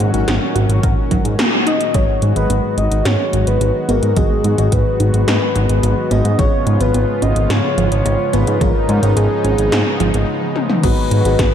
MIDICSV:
0, 0, Header, 1, 7, 480
1, 0, Start_track
1, 0, Tempo, 555556
1, 1680, Time_signature, 4, 2, 24, 8
1, 9973, End_track
2, 0, Start_track
2, 0, Title_t, "Soft synth lead"
2, 0, Program_c, 0, 80
2, 1443, Note_on_c, 0, 75, 109
2, 1681, Note_on_c, 0, 73, 109
2, 1694, Note_off_c, 0, 75, 0
2, 2037, Note_off_c, 0, 73, 0
2, 2042, Note_on_c, 0, 71, 104
2, 2376, Note_off_c, 0, 71, 0
2, 2402, Note_on_c, 0, 75, 104
2, 2641, Note_on_c, 0, 73, 109
2, 2654, Note_off_c, 0, 75, 0
2, 2996, Note_off_c, 0, 73, 0
2, 3001, Note_on_c, 0, 71, 100
2, 3361, Note_on_c, 0, 70, 97
2, 3374, Note_off_c, 0, 71, 0
2, 3601, Note_on_c, 0, 68, 101
2, 3614, Note_off_c, 0, 70, 0
2, 4083, Note_on_c, 0, 71, 106
2, 4096, Note_off_c, 0, 68, 0
2, 5283, Note_on_c, 0, 75, 107
2, 5296, Note_off_c, 0, 71, 0
2, 5517, Note_off_c, 0, 75, 0
2, 5523, Note_on_c, 0, 73, 108
2, 5882, Note_on_c, 0, 71, 105
2, 5895, Note_off_c, 0, 73, 0
2, 6240, Note_on_c, 0, 75, 105
2, 6253, Note_off_c, 0, 71, 0
2, 6478, Note_off_c, 0, 75, 0
2, 6483, Note_on_c, 0, 73, 107
2, 6817, Note_off_c, 0, 73, 0
2, 6842, Note_on_c, 0, 73, 96
2, 7201, Note_on_c, 0, 71, 94
2, 7214, Note_off_c, 0, 73, 0
2, 7443, Note_on_c, 0, 70, 101
2, 7456, Note_off_c, 0, 71, 0
2, 7922, Note_on_c, 0, 68, 88
2, 7935, Note_off_c, 0, 70, 0
2, 8881, Note_off_c, 0, 68, 0
2, 9358, Note_on_c, 0, 71, 113
2, 9973, Note_off_c, 0, 71, 0
2, 9973, End_track
3, 0, Start_track
3, 0, Title_t, "FM electric piano"
3, 0, Program_c, 1, 5
3, 0, Note_on_c, 1, 56, 84
3, 0, Note_on_c, 1, 63, 73
3, 0, Note_on_c, 1, 66, 78
3, 0, Note_on_c, 1, 70, 76
3, 0, Note_on_c, 1, 78, 90
3, 92, Note_off_c, 1, 56, 0
3, 92, Note_off_c, 1, 63, 0
3, 92, Note_off_c, 1, 66, 0
3, 92, Note_off_c, 1, 70, 0
3, 92, Note_off_c, 1, 78, 0
3, 120, Note_on_c, 1, 56, 78
3, 120, Note_on_c, 1, 63, 76
3, 120, Note_on_c, 1, 66, 74
3, 120, Note_on_c, 1, 70, 75
3, 120, Note_on_c, 1, 78, 91
3, 1412, Note_off_c, 1, 56, 0
3, 1412, Note_off_c, 1, 63, 0
3, 1412, Note_off_c, 1, 66, 0
3, 1412, Note_off_c, 1, 70, 0
3, 1412, Note_off_c, 1, 78, 0
3, 1680, Note_on_c, 1, 44, 83
3, 1680, Note_on_c, 1, 59, 75
3, 1680, Note_on_c, 1, 66, 75
3, 1680, Note_on_c, 1, 68, 76
3, 1680, Note_on_c, 1, 75, 95
3, 2011, Note_off_c, 1, 44, 0
3, 2011, Note_off_c, 1, 59, 0
3, 2011, Note_off_c, 1, 75, 0
3, 2012, Note_off_c, 1, 66, 0
3, 2012, Note_off_c, 1, 68, 0
3, 2040, Note_on_c, 1, 44, 83
3, 2040, Note_on_c, 1, 59, 77
3, 2040, Note_on_c, 1, 66, 73
3, 2040, Note_on_c, 1, 68, 71
3, 2040, Note_on_c, 1, 75, 92
3, 3331, Note_off_c, 1, 44, 0
3, 3331, Note_off_c, 1, 66, 0
3, 3332, Note_off_c, 1, 59, 0
3, 3332, Note_off_c, 1, 68, 0
3, 3332, Note_off_c, 1, 75, 0
3, 3359, Note_on_c, 1, 44, 85
3, 3359, Note_on_c, 1, 59, 82
3, 3359, Note_on_c, 1, 66, 82
3, 3359, Note_on_c, 1, 68, 83
3, 3360, Note_on_c, 1, 75, 97
3, 3571, Note_off_c, 1, 44, 0
3, 3571, Note_off_c, 1, 59, 0
3, 3571, Note_off_c, 1, 66, 0
3, 3571, Note_off_c, 1, 68, 0
3, 3571, Note_off_c, 1, 75, 0
3, 3599, Note_on_c, 1, 44, 87
3, 3599, Note_on_c, 1, 59, 75
3, 3599, Note_on_c, 1, 66, 75
3, 3599, Note_on_c, 1, 68, 75
3, 3599, Note_on_c, 1, 75, 96
3, 3931, Note_off_c, 1, 44, 0
3, 3931, Note_off_c, 1, 59, 0
3, 3931, Note_off_c, 1, 66, 0
3, 3931, Note_off_c, 1, 68, 0
3, 3931, Note_off_c, 1, 75, 0
3, 3959, Note_on_c, 1, 44, 80
3, 3959, Note_on_c, 1, 59, 76
3, 3959, Note_on_c, 1, 66, 75
3, 3959, Note_on_c, 1, 68, 76
3, 3959, Note_on_c, 1, 75, 89
3, 5251, Note_off_c, 1, 44, 0
3, 5251, Note_off_c, 1, 59, 0
3, 5251, Note_off_c, 1, 66, 0
3, 5251, Note_off_c, 1, 68, 0
3, 5251, Note_off_c, 1, 75, 0
3, 5279, Note_on_c, 1, 44, 91
3, 5279, Note_on_c, 1, 68, 81
3, 5280, Note_on_c, 1, 59, 78
3, 5280, Note_on_c, 1, 66, 80
3, 5280, Note_on_c, 1, 75, 98
3, 5491, Note_off_c, 1, 44, 0
3, 5491, Note_off_c, 1, 59, 0
3, 5491, Note_off_c, 1, 66, 0
3, 5491, Note_off_c, 1, 68, 0
3, 5491, Note_off_c, 1, 75, 0
3, 5519, Note_on_c, 1, 44, 84
3, 5519, Note_on_c, 1, 59, 81
3, 5519, Note_on_c, 1, 65, 80
3, 5519, Note_on_c, 1, 68, 77
3, 5519, Note_on_c, 1, 73, 93
3, 5851, Note_off_c, 1, 44, 0
3, 5851, Note_off_c, 1, 59, 0
3, 5851, Note_off_c, 1, 65, 0
3, 5851, Note_off_c, 1, 68, 0
3, 5851, Note_off_c, 1, 73, 0
3, 5879, Note_on_c, 1, 44, 84
3, 5879, Note_on_c, 1, 59, 80
3, 5879, Note_on_c, 1, 65, 80
3, 5879, Note_on_c, 1, 68, 75
3, 5879, Note_on_c, 1, 73, 94
3, 7171, Note_off_c, 1, 44, 0
3, 7171, Note_off_c, 1, 59, 0
3, 7171, Note_off_c, 1, 65, 0
3, 7171, Note_off_c, 1, 68, 0
3, 7171, Note_off_c, 1, 73, 0
3, 7199, Note_on_c, 1, 68, 79
3, 7200, Note_on_c, 1, 44, 86
3, 7200, Note_on_c, 1, 59, 83
3, 7200, Note_on_c, 1, 65, 82
3, 7200, Note_on_c, 1, 73, 97
3, 7411, Note_off_c, 1, 44, 0
3, 7411, Note_off_c, 1, 59, 0
3, 7411, Note_off_c, 1, 65, 0
3, 7411, Note_off_c, 1, 68, 0
3, 7411, Note_off_c, 1, 73, 0
3, 7440, Note_on_c, 1, 59, 77
3, 7440, Note_on_c, 1, 65, 76
3, 7441, Note_on_c, 1, 44, 86
3, 7441, Note_on_c, 1, 68, 77
3, 7441, Note_on_c, 1, 73, 94
3, 7772, Note_off_c, 1, 44, 0
3, 7772, Note_off_c, 1, 59, 0
3, 7772, Note_off_c, 1, 65, 0
3, 7772, Note_off_c, 1, 68, 0
3, 7772, Note_off_c, 1, 73, 0
3, 7800, Note_on_c, 1, 44, 82
3, 7800, Note_on_c, 1, 65, 76
3, 7800, Note_on_c, 1, 68, 76
3, 7800, Note_on_c, 1, 73, 95
3, 7801, Note_on_c, 1, 59, 77
3, 8880, Note_off_c, 1, 65, 0
3, 8880, Note_off_c, 1, 68, 0
3, 8880, Note_off_c, 1, 73, 0
3, 8881, Note_off_c, 1, 44, 0
3, 8881, Note_off_c, 1, 59, 0
3, 9360, Note_on_c, 1, 44, 88
3, 9360, Note_on_c, 1, 59, 78
3, 9360, Note_on_c, 1, 66, 75
3, 9360, Note_on_c, 1, 68, 75
3, 9360, Note_on_c, 1, 75, 95
3, 9692, Note_off_c, 1, 44, 0
3, 9692, Note_off_c, 1, 59, 0
3, 9692, Note_off_c, 1, 66, 0
3, 9692, Note_off_c, 1, 68, 0
3, 9692, Note_off_c, 1, 75, 0
3, 9721, Note_on_c, 1, 44, 85
3, 9721, Note_on_c, 1, 59, 78
3, 9721, Note_on_c, 1, 66, 79
3, 9721, Note_on_c, 1, 68, 77
3, 9721, Note_on_c, 1, 75, 91
3, 9973, Note_off_c, 1, 44, 0
3, 9973, Note_off_c, 1, 59, 0
3, 9973, Note_off_c, 1, 66, 0
3, 9973, Note_off_c, 1, 68, 0
3, 9973, Note_off_c, 1, 75, 0
3, 9973, End_track
4, 0, Start_track
4, 0, Title_t, "Synth arpeggio sound"
4, 0, Program_c, 2, 84
4, 0, Note_on_c, 2, 58, 84
4, 197, Note_off_c, 2, 58, 0
4, 240, Note_on_c, 2, 63, 74
4, 437, Note_off_c, 2, 63, 0
4, 479, Note_on_c, 2, 66, 76
4, 676, Note_off_c, 2, 66, 0
4, 719, Note_on_c, 2, 70, 83
4, 838, Note_off_c, 2, 70, 0
4, 959, Note_on_c, 2, 54, 105
4, 1188, Note_off_c, 2, 54, 0
4, 1199, Note_on_c, 2, 58, 98
4, 1428, Note_off_c, 2, 58, 0
4, 1440, Note_on_c, 2, 63, 102
4, 1668, Note_off_c, 2, 63, 0
4, 1679, Note_on_c, 2, 54, 107
4, 1876, Note_off_c, 2, 54, 0
4, 1921, Note_on_c, 2, 56, 81
4, 2117, Note_off_c, 2, 56, 0
4, 2159, Note_on_c, 2, 59, 74
4, 2357, Note_off_c, 2, 59, 0
4, 2400, Note_on_c, 2, 63, 75
4, 2597, Note_off_c, 2, 63, 0
4, 2639, Note_on_c, 2, 66, 85
4, 2758, Note_off_c, 2, 66, 0
4, 2879, Note_on_c, 2, 54, 102
4, 3108, Note_off_c, 2, 54, 0
4, 3119, Note_on_c, 2, 56, 100
4, 3348, Note_off_c, 2, 56, 0
4, 3357, Note_on_c, 2, 59, 106
4, 3587, Note_off_c, 2, 59, 0
4, 3598, Note_on_c, 2, 54, 101
4, 3796, Note_off_c, 2, 54, 0
4, 3838, Note_on_c, 2, 56, 78
4, 4036, Note_off_c, 2, 56, 0
4, 4079, Note_on_c, 2, 59, 75
4, 4276, Note_off_c, 2, 59, 0
4, 4318, Note_on_c, 2, 63, 76
4, 4516, Note_off_c, 2, 63, 0
4, 4558, Note_on_c, 2, 66, 87
4, 4677, Note_off_c, 2, 66, 0
4, 4799, Note_on_c, 2, 54, 112
4, 5028, Note_off_c, 2, 54, 0
4, 5039, Note_on_c, 2, 56, 101
4, 5268, Note_off_c, 2, 56, 0
4, 5280, Note_on_c, 2, 59, 102
4, 5508, Note_off_c, 2, 59, 0
4, 5519, Note_on_c, 2, 53, 104
4, 5716, Note_off_c, 2, 53, 0
4, 5760, Note_on_c, 2, 56, 81
4, 5957, Note_off_c, 2, 56, 0
4, 5999, Note_on_c, 2, 59, 72
4, 6196, Note_off_c, 2, 59, 0
4, 6239, Note_on_c, 2, 61, 76
4, 6436, Note_off_c, 2, 61, 0
4, 6479, Note_on_c, 2, 65, 81
4, 6598, Note_off_c, 2, 65, 0
4, 6718, Note_on_c, 2, 53, 105
4, 6947, Note_off_c, 2, 53, 0
4, 6959, Note_on_c, 2, 56, 96
4, 7188, Note_off_c, 2, 56, 0
4, 7199, Note_on_c, 2, 59, 104
4, 7428, Note_off_c, 2, 59, 0
4, 7440, Note_on_c, 2, 53, 101
4, 7637, Note_off_c, 2, 53, 0
4, 7681, Note_on_c, 2, 56, 80
4, 7877, Note_off_c, 2, 56, 0
4, 7920, Note_on_c, 2, 59, 73
4, 8117, Note_off_c, 2, 59, 0
4, 8160, Note_on_c, 2, 61, 74
4, 8357, Note_off_c, 2, 61, 0
4, 8402, Note_on_c, 2, 65, 86
4, 8519, Note_off_c, 2, 65, 0
4, 8642, Note_on_c, 2, 53, 113
4, 8869, Note_off_c, 2, 53, 0
4, 9362, Note_on_c, 2, 54, 101
4, 9558, Note_off_c, 2, 54, 0
4, 9604, Note_on_c, 2, 56, 80
4, 9799, Note_off_c, 2, 56, 0
4, 9843, Note_on_c, 2, 59, 74
4, 9973, Note_off_c, 2, 59, 0
4, 9973, End_track
5, 0, Start_track
5, 0, Title_t, "Analog synth pad"
5, 0, Program_c, 3, 89
5, 0, Note_on_c, 3, 46, 79
5, 0, Note_on_c, 3, 51, 75
5, 0, Note_on_c, 3, 54, 75
5, 0, Note_on_c, 3, 61, 73
5, 0, Note_on_c, 3, 66, 92
5, 1645, Note_off_c, 3, 51, 0
5, 1646, Note_off_c, 3, 54, 0
5, 1646, Note_off_c, 3, 66, 0
5, 1647, Note_off_c, 3, 46, 0
5, 1661, Note_off_c, 3, 61, 0
5, 1680, Note_on_c, 3, 51, 77
5, 1680, Note_on_c, 3, 54, 75
5, 1681, Note_on_c, 3, 56, 72
5, 1681, Note_on_c, 3, 59, 75
5, 1681, Note_on_c, 3, 66, 87
5, 5486, Note_off_c, 3, 51, 0
5, 5486, Note_off_c, 3, 54, 0
5, 5486, Note_off_c, 3, 66, 0
5, 5519, Note_on_c, 3, 49, 82
5, 5519, Note_on_c, 3, 53, 73
5, 5519, Note_on_c, 3, 65, 91
5, 7421, Note_off_c, 3, 65, 0
5, 7440, Note_on_c, 3, 63, 92
5, 9325, Note_off_c, 3, 49, 0
5, 9325, Note_off_c, 3, 53, 0
5, 9326, Note_off_c, 3, 56, 0
5, 9326, Note_off_c, 3, 59, 0
5, 9341, Note_off_c, 3, 63, 0
5, 9361, Note_on_c, 3, 51, 85
5, 9361, Note_on_c, 3, 54, 78
5, 9361, Note_on_c, 3, 56, 78
5, 9361, Note_on_c, 3, 66, 90
5, 9362, Note_on_c, 3, 59, 74
5, 9973, Note_off_c, 3, 51, 0
5, 9973, Note_off_c, 3, 54, 0
5, 9973, Note_off_c, 3, 56, 0
5, 9973, Note_off_c, 3, 59, 0
5, 9973, Note_off_c, 3, 66, 0
5, 9973, End_track
6, 0, Start_track
6, 0, Title_t, "Analog synth bass"
6, 0, Program_c, 4, 38
6, 0, Note_on_c, 4, 44, 93
6, 93, Note_off_c, 4, 44, 0
6, 119, Note_on_c, 4, 32, 81
6, 213, Note_off_c, 4, 32, 0
6, 239, Note_on_c, 4, 32, 100
6, 333, Note_off_c, 4, 32, 0
6, 479, Note_on_c, 4, 32, 85
6, 573, Note_off_c, 4, 32, 0
6, 599, Note_on_c, 4, 32, 82
6, 693, Note_off_c, 4, 32, 0
6, 721, Note_on_c, 4, 32, 98
6, 814, Note_off_c, 4, 32, 0
6, 961, Note_on_c, 4, 32, 93
6, 1054, Note_off_c, 4, 32, 0
6, 1078, Note_on_c, 4, 44, 85
6, 1172, Note_off_c, 4, 44, 0
6, 1680, Note_on_c, 4, 32, 100
6, 1774, Note_off_c, 4, 32, 0
6, 1920, Note_on_c, 4, 44, 93
6, 2014, Note_off_c, 4, 44, 0
6, 2039, Note_on_c, 4, 32, 82
6, 2133, Note_off_c, 4, 32, 0
6, 2159, Note_on_c, 4, 32, 103
6, 2253, Note_off_c, 4, 32, 0
6, 2398, Note_on_c, 4, 32, 87
6, 2493, Note_off_c, 4, 32, 0
6, 2519, Note_on_c, 4, 32, 79
6, 2613, Note_off_c, 4, 32, 0
6, 2638, Note_on_c, 4, 44, 100
6, 2733, Note_off_c, 4, 44, 0
6, 2880, Note_on_c, 4, 32, 92
6, 2973, Note_off_c, 4, 32, 0
6, 3000, Note_on_c, 4, 32, 79
6, 3094, Note_off_c, 4, 32, 0
6, 3118, Note_on_c, 4, 32, 105
6, 3213, Note_off_c, 4, 32, 0
6, 3359, Note_on_c, 4, 32, 94
6, 3453, Note_off_c, 4, 32, 0
6, 3478, Note_on_c, 4, 44, 78
6, 3573, Note_off_c, 4, 44, 0
6, 3600, Note_on_c, 4, 32, 98
6, 3694, Note_off_c, 4, 32, 0
6, 3840, Note_on_c, 4, 44, 96
6, 3933, Note_off_c, 4, 44, 0
6, 3959, Note_on_c, 4, 32, 80
6, 4053, Note_off_c, 4, 32, 0
6, 4079, Note_on_c, 4, 32, 102
6, 4173, Note_off_c, 4, 32, 0
6, 4319, Note_on_c, 4, 32, 85
6, 4413, Note_off_c, 4, 32, 0
6, 4439, Note_on_c, 4, 32, 81
6, 4533, Note_off_c, 4, 32, 0
6, 4560, Note_on_c, 4, 44, 92
6, 4654, Note_off_c, 4, 44, 0
6, 4801, Note_on_c, 4, 32, 91
6, 4894, Note_off_c, 4, 32, 0
6, 4920, Note_on_c, 4, 32, 85
6, 5014, Note_off_c, 4, 32, 0
6, 5039, Note_on_c, 4, 32, 100
6, 5133, Note_off_c, 4, 32, 0
6, 5280, Note_on_c, 4, 32, 95
6, 5374, Note_off_c, 4, 32, 0
6, 5400, Note_on_c, 4, 44, 83
6, 5493, Note_off_c, 4, 44, 0
6, 5520, Note_on_c, 4, 32, 102
6, 5613, Note_off_c, 4, 32, 0
6, 5759, Note_on_c, 4, 44, 96
6, 5853, Note_off_c, 4, 44, 0
6, 5880, Note_on_c, 4, 32, 83
6, 5974, Note_off_c, 4, 32, 0
6, 6000, Note_on_c, 4, 32, 104
6, 6093, Note_off_c, 4, 32, 0
6, 6239, Note_on_c, 4, 32, 91
6, 6333, Note_off_c, 4, 32, 0
6, 6359, Note_on_c, 4, 32, 79
6, 6453, Note_off_c, 4, 32, 0
6, 6478, Note_on_c, 4, 44, 98
6, 6573, Note_off_c, 4, 44, 0
6, 6719, Note_on_c, 4, 32, 92
6, 6813, Note_off_c, 4, 32, 0
6, 6840, Note_on_c, 4, 32, 82
6, 6934, Note_off_c, 4, 32, 0
6, 6960, Note_on_c, 4, 32, 104
6, 7054, Note_off_c, 4, 32, 0
6, 7201, Note_on_c, 4, 32, 93
6, 7294, Note_off_c, 4, 32, 0
6, 7322, Note_on_c, 4, 44, 82
6, 7414, Note_off_c, 4, 44, 0
6, 7440, Note_on_c, 4, 32, 102
6, 7533, Note_off_c, 4, 32, 0
6, 7680, Note_on_c, 4, 44, 96
6, 7774, Note_off_c, 4, 44, 0
6, 7800, Note_on_c, 4, 32, 80
6, 7893, Note_off_c, 4, 32, 0
6, 7920, Note_on_c, 4, 32, 102
6, 8014, Note_off_c, 4, 32, 0
6, 8161, Note_on_c, 4, 32, 88
6, 8254, Note_off_c, 4, 32, 0
6, 8281, Note_on_c, 4, 32, 83
6, 8374, Note_off_c, 4, 32, 0
6, 8402, Note_on_c, 4, 44, 97
6, 8494, Note_off_c, 4, 44, 0
6, 8641, Note_on_c, 4, 32, 92
6, 8734, Note_off_c, 4, 32, 0
6, 8761, Note_on_c, 4, 32, 86
6, 8854, Note_off_c, 4, 32, 0
6, 9361, Note_on_c, 4, 32, 105
6, 9454, Note_off_c, 4, 32, 0
6, 9601, Note_on_c, 4, 44, 94
6, 9694, Note_off_c, 4, 44, 0
6, 9720, Note_on_c, 4, 32, 79
6, 9814, Note_off_c, 4, 32, 0
6, 9841, Note_on_c, 4, 32, 96
6, 9934, Note_off_c, 4, 32, 0
6, 9973, End_track
7, 0, Start_track
7, 0, Title_t, "Drums"
7, 1, Note_on_c, 9, 42, 66
7, 87, Note_off_c, 9, 42, 0
7, 120, Note_on_c, 9, 42, 64
7, 207, Note_off_c, 9, 42, 0
7, 240, Note_on_c, 9, 38, 115
7, 240, Note_on_c, 9, 42, 92
7, 327, Note_off_c, 9, 38, 0
7, 327, Note_off_c, 9, 42, 0
7, 481, Note_on_c, 9, 42, 66
7, 567, Note_off_c, 9, 42, 0
7, 601, Note_on_c, 9, 42, 66
7, 687, Note_off_c, 9, 42, 0
7, 721, Note_on_c, 9, 36, 114
7, 721, Note_on_c, 9, 42, 91
7, 807, Note_off_c, 9, 36, 0
7, 807, Note_off_c, 9, 42, 0
7, 961, Note_on_c, 9, 36, 56
7, 961, Note_on_c, 9, 42, 65
7, 1047, Note_off_c, 9, 36, 0
7, 1047, Note_off_c, 9, 42, 0
7, 1081, Note_on_c, 9, 42, 68
7, 1167, Note_off_c, 9, 42, 0
7, 1200, Note_on_c, 9, 38, 111
7, 1200, Note_on_c, 9, 42, 93
7, 1287, Note_off_c, 9, 38, 0
7, 1287, Note_off_c, 9, 42, 0
7, 1440, Note_on_c, 9, 42, 63
7, 1527, Note_off_c, 9, 42, 0
7, 1560, Note_on_c, 9, 42, 66
7, 1647, Note_off_c, 9, 42, 0
7, 1679, Note_on_c, 9, 42, 91
7, 1681, Note_on_c, 9, 36, 114
7, 1766, Note_off_c, 9, 42, 0
7, 1767, Note_off_c, 9, 36, 0
7, 1919, Note_on_c, 9, 42, 67
7, 2006, Note_off_c, 9, 42, 0
7, 2040, Note_on_c, 9, 42, 67
7, 2127, Note_off_c, 9, 42, 0
7, 2159, Note_on_c, 9, 42, 99
7, 2246, Note_off_c, 9, 42, 0
7, 2399, Note_on_c, 9, 42, 68
7, 2486, Note_off_c, 9, 42, 0
7, 2519, Note_on_c, 9, 42, 69
7, 2606, Note_off_c, 9, 42, 0
7, 2639, Note_on_c, 9, 38, 119
7, 2639, Note_on_c, 9, 42, 95
7, 2725, Note_off_c, 9, 38, 0
7, 2725, Note_off_c, 9, 42, 0
7, 2879, Note_on_c, 9, 42, 66
7, 2966, Note_off_c, 9, 42, 0
7, 2999, Note_on_c, 9, 42, 64
7, 3086, Note_off_c, 9, 42, 0
7, 3119, Note_on_c, 9, 42, 91
7, 3206, Note_off_c, 9, 42, 0
7, 3359, Note_on_c, 9, 42, 73
7, 3446, Note_off_c, 9, 42, 0
7, 3479, Note_on_c, 9, 42, 64
7, 3566, Note_off_c, 9, 42, 0
7, 3599, Note_on_c, 9, 42, 92
7, 3600, Note_on_c, 9, 36, 117
7, 3685, Note_off_c, 9, 42, 0
7, 3686, Note_off_c, 9, 36, 0
7, 3840, Note_on_c, 9, 42, 69
7, 3926, Note_off_c, 9, 42, 0
7, 3960, Note_on_c, 9, 42, 71
7, 4046, Note_off_c, 9, 42, 0
7, 4079, Note_on_c, 9, 42, 100
7, 4080, Note_on_c, 9, 36, 66
7, 4166, Note_off_c, 9, 36, 0
7, 4166, Note_off_c, 9, 42, 0
7, 4320, Note_on_c, 9, 42, 69
7, 4407, Note_off_c, 9, 42, 0
7, 4440, Note_on_c, 9, 42, 64
7, 4526, Note_off_c, 9, 42, 0
7, 4560, Note_on_c, 9, 38, 124
7, 4560, Note_on_c, 9, 42, 96
7, 4647, Note_off_c, 9, 38, 0
7, 4647, Note_off_c, 9, 42, 0
7, 4800, Note_on_c, 9, 42, 65
7, 4886, Note_off_c, 9, 42, 0
7, 4920, Note_on_c, 9, 42, 67
7, 5006, Note_off_c, 9, 42, 0
7, 5040, Note_on_c, 9, 42, 94
7, 5127, Note_off_c, 9, 42, 0
7, 5280, Note_on_c, 9, 42, 69
7, 5366, Note_off_c, 9, 42, 0
7, 5400, Note_on_c, 9, 42, 65
7, 5487, Note_off_c, 9, 42, 0
7, 5520, Note_on_c, 9, 36, 124
7, 5520, Note_on_c, 9, 42, 90
7, 5606, Note_off_c, 9, 36, 0
7, 5606, Note_off_c, 9, 42, 0
7, 5760, Note_on_c, 9, 42, 67
7, 5847, Note_off_c, 9, 42, 0
7, 5880, Note_on_c, 9, 42, 65
7, 5966, Note_off_c, 9, 42, 0
7, 5999, Note_on_c, 9, 42, 96
7, 6086, Note_off_c, 9, 42, 0
7, 6240, Note_on_c, 9, 42, 67
7, 6326, Note_off_c, 9, 42, 0
7, 6360, Note_on_c, 9, 42, 67
7, 6447, Note_off_c, 9, 42, 0
7, 6481, Note_on_c, 9, 38, 122
7, 6481, Note_on_c, 9, 42, 91
7, 6567, Note_off_c, 9, 38, 0
7, 6567, Note_off_c, 9, 42, 0
7, 6721, Note_on_c, 9, 42, 68
7, 6808, Note_off_c, 9, 42, 0
7, 6841, Note_on_c, 9, 42, 66
7, 6927, Note_off_c, 9, 42, 0
7, 6961, Note_on_c, 9, 42, 92
7, 7047, Note_off_c, 9, 42, 0
7, 7200, Note_on_c, 9, 42, 70
7, 7287, Note_off_c, 9, 42, 0
7, 7321, Note_on_c, 9, 42, 68
7, 7408, Note_off_c, 9, 42, 0
7, 7440, Note_on_c, 9, 36, 126
7, 7441, Note_on_c, 9, 42, 88
7, 7527, Note_off_c, 9, 36, 0
7, 7527, Note_off_c, 9, 42, 0
7, 7680, Note_on_c, 9, 42, 66
7, 7767, Note_off_c, 9, 42, 0
7, 7801, Note_on_c, 9, 42, 62
7, 7887, Note_off_c, 9, 42, 0
7, 7921, Note_on_c, 9, 42, 92
7, 8007, Note_off_c, 9, 42, 0
7, 8161, Note_on_c, 9, 42, 63
7, 8247, Note_off_c, 9, 42, 0
7, 8281, Note_on_c, 9, 42, 61
7, 8367, Note_off_c, 9, 42, 0
7, 8400, Note_on_c, 9, 38, 122
7, 8400, Note_on_c, 9, 42, 94
7, 8487, Note_off_c, 9, 38, 0
7, 8487, Note_off_c, 9, 42, 0
7, 8641, Note_on_c, 9, 42, 65
7, 8727, Note_off_c, 9, 42, 0
7, 8761, Note_on_c, 9, 42, 68
7, 8848, Note_off_c, 9, 42, 0
7, 9121, Note_on_c, 9, 48, 65
7, 9207, Note_off_c, 9, 48, 0
7, 9241, Note_on_c, 9, 47, 72
7, 9327, Note_off_c, 9, 47, 0
7, 9361, Note_on_c, 9, 36, 123
7, 9361, Note_on_c, 9, 42, 93
7, 9361, Note_on_c, 9, 49, 100
7, 9447, Note_off_c, 9, 36, 0
7, 9447, Note_off_c, 9, 42, 0
7, 9447, Note_off_c, 9, 49, 0
7, 9602, Note_on_c, 9, 42, 72
7, 9689, Note_off_c, 9, 42, 0
7, 9722, Note_on_c, 9, 42, 69
7, 9808, Note_off_c, 9, 42, 0
7, 9841, Note_on_c, 9, 36, 127
7, 9841, Note_on_c, 9, 38, 113
7, 9841, Note_on_c, 9, 42, 99
7, 9928, Note_off_c, 9, 36, 0
7, 9928, Note_off_c, 9, 38, 0
7, 9928, Note_off_c, 9, 42, 0
7, 9973, End_track
0, 0, End_of_file